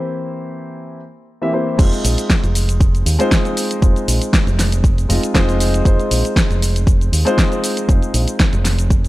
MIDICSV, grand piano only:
0, 0, Header, 1, 2, 480
1, 0, Start_track
1, 0, Key_signature, -4, "minor"
1, 0, Tempo, 508475
1, 1688, Time_signature, 4, 2, 24, 8
1, 8574, End_track
2, 0, Start_track
2, 0, Title_t, "Grand piano"
2, 0, Program_c, 0, 0
2, 0, Note_on_c, 0, 52, 64
2, 0, Note_on_c, 0, 58, 56
2, 0, Note_on_c, 0, 60, 61
2, 0, Note_on_c, 0, 64, 58
2, 0, Note_on_c, 0, 67, 59
2, 0, Note_on_c, 0, 72, 71
2, 936, Note_off_c, 0, 52, 0
2, 939, Note_off_c, 0, 58, 0
2, 940, Note_off_c, 0, 60, 0
2, 941, Note_off_c, 0, 64, 0
2, 943, Note_off_c, 0, 67, 0
2, 945, Note_off_c, 0, 72, 0
2, 1336, Note_on_c, 0, 52, 76
2, 1338, Note_on_c, 0, 58, 67
2, 1339, Note_on_c, 0, 60, 70
2, 1340, Note_on_c, 0, 64, 68
2, 1342, Note_on_c, 0, 67, 68
2, 1346, Note_on_c, 0, 76, 84
2, 1421, Note_off_c, 0, 52, 0
2, 1422, Note_off_c, 0, 58, 0
2, 1422, Note_off_c, 0, 60, 0
2, 1423, Note_off_c, 0, 64, 0
2, 1424, Note_off_c, 0, 67, 0
2, 1426, Note_off_c, 0, 76, 0
2, 1443, Note_on_c, 0, 52, 70
2, 1446, Note_on_c, 0, 60, 67
2, 1447, Note_on_c, 0, 58, 70
2, 1450, Note_on_c, 0, 64, 66
2, 1451, Note_on_c, 0, 67, 67
2, 1453, Note_on_c, 0, 72, 78
2, 1658, Note_off_c, 0, 52, 0
2, 1660, Note_off_c, 0, 58, 0
2, 1660, Note_off_c, 0, 60, 0
2, 1662, Note_off_c, 0, 64, 0
2, 1663, Note_off_c, 0, 67, 0
2, 1664, Note_off_c, 0, 72, 0
2, 1680, Note_on_c, 0, 56, 79
2, 1683, Note_on_c, 0, 60, 73
2, 1689, Note_on_c, 0, 63, 73
2, 1693, Note_on_c, 0, 65, 72
2, 1698, Note_on_c, 0, 72, 87
2, 2981, Note_off_c, 0, 56, 0
2, 2982, Note_off_c, 0, 60, 0
2, 2985, Note_off_c, 0, 63, 0
2, 2988, Note_off_c, 0, 65, 0
2, 2990, Note_off_c, 0, 72, 0
2, 3008, Note_on_c, 0, 56, 97
2, 3013, Note_on_c, 0, 60, 85
2, 3016, Note_on_c, 0, 63, 90
2, 3022, Note_on_c, 0, 65, 88
2, 3026, Note_on_c, 0, 72, 104
2, 3577, Note_off_c, 0, 56, 0
2, 3579, Note_off_c, 0, 60, 0
2, 3581, Note_off_c, 0, 63, 0
2, 3584, Note_off_c, 0, 65, 0
2, 3586, Note_off_c, 0, 72, 0
2, 3600, Note_on_c, 0, 56, 74
2, 3605, Note_on_c, 0, 60, 64
2, 3609, Note_on_c, 0, 63, 63
2, 3614, Note_on_c, 0, 65, 61
2, 3618, Note_on_c, 0, 72, 74
2, 4777, Note_off_c, 0, 56, 0
2, 4780, Note_off_c, 0, 60, 0
2, 4782, Note_off_c, 0, 63, 0
2, 4784, Note_off_c, 0, 65, 0
2, 4786, Note_off_c, 0, 72, 0
2, 4801, Note_on_c, 0, 56, 75
2, 4804, Note_on_c, 0, 60, 69
2, 4804, Note_on_c, 0, 63, 69
2, 4809, Note_on_c, 0, 65, 70
2, 4810, Note_on_c, 0, 75, 82
2, 5018, Note_off_c, 0, 56, 0
2, 5019, Note_off_c, 0, 60, 0
2, 5019, Note_off_c, 0, 63, 0
2, 5022, Note_off_c, 0, 65, 0
2, 5022, Note_off_c, 0, 75, 0
2, 5042, Note_on_c, 0, 56, 100
2, 5043, Note_on_c, 0, 60, 90
2, 5048, Note_on_c, 0, 63, 91
2, 5050, Note_on_c, 0, 65, 92
2, 5050, Note_on_c, 0, 72, 112
2, 5498, Note_off_c, 0, 56, 0
2, 5498, Note_off_c, 0, 60, 0
2, 5501, Note_off_c, 0, 63, 0
2, 5502, Note_off_c, 0, 65, 0
2, 5502, Note_off_c, 0, 72, 0
2, 5520, Note_on_c, 0, 56, 77
2, 5522, Note_on_c, 0, 60, 74
2, 5526, Note_on_c, 0, 63, 72
2, 5533, Note_on_c, 0, 65, 71
2, 5538, Note_on_c, 0, 72, 87
2, 6821, Note_off_c, 0, 56, 0
2, 6822, Note_off_c, 0, 60, 0
2, 6824, Note_off_c, 0, 63, 0
2, 6827, Note_off_c, 0, 65, 0
2, 6830, Note_off_c, 0, 72, 0
2, 6844, Note_on_c, 0, 56, 98
2, 6848, Note_on_c, 0, 60, 90
2, 6852, Note_on_c, 0, 63, 93
2, 6857, Note_on_c, 0, 65, 89
2, 6862, Note_on_c, 0, 72, 109
2, 7415, Note_off_c, 0, 56, 0
2, 7417, Note_off_c, 0, 60, 0
2, 7419, Note_off_c, 0, 63, 0
2, 7421, Note_off_c, 0, 65, 0
2, 7424, Note_off_c, 0, 72, 0
2, 7439, Note_on_c, 0, 56, 69
2, 7445, Note_on_c, 0, 60, 63
2, 7448, Note_on_c, 0, 63, 66
2, 7453, Note_on_c, 0, 65, 65
2, 7456, Note_on_c, 0, 72, 78
2, 8574, Note_off_c, 0, 56, 0
2, 8574, Note_off_c, 0, 60, 0
2, 8574, Note_off_c, 0, 63, 0
2, 8574, Note_off_c, 0, 65, 0
2, 8574, Note_off_c, 0, 72, 0
2, 8574, End_track
0, 0, End_of_file